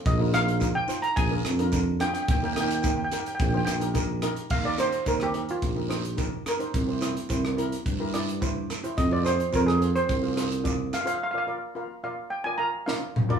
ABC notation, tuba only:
X:1
M:4/4
L:1/8
Q:1/4=108
K:Eb
V:1 name="Tuba" clef=bass
B,,,3 z B,,, F,,3 | E,,4 B,,, B,,,3 | E,,2 E,,2 B,,,3 z | C,,2 C,,2 G,,4 |
F,,2 F,,2 C,,4 | z8 |]